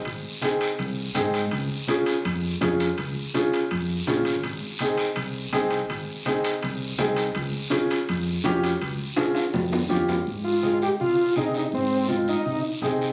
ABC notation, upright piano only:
X:1
M:4/4
L:1/8
Q:1/4=164
K:Ab
V:1 name="Upright piano"
z2 [CEA] z3 [CEA] z | z2 [DFA] z3 [DFA] z | z2 [DFA] z3 [DFA] z | z2 [CEA] z3 [CEA] z |
z2 [CEA] z3 [CEA] z | z2 [DFA] z3 [DFG] z | z2 [DFA] z3 [DFG] z | z2 [CEA] z3 [CEA] z |
z2 [CEF] z3 [CEA] z |]